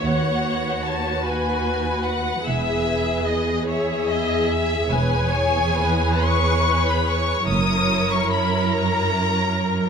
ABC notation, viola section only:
X:1
M:6/8
L:1/8
Q:3/8=49
K:E
V:1 name="Viola section"
c3 B3 | G3 G3 | [K:C#dor] B c B4 | A6 |]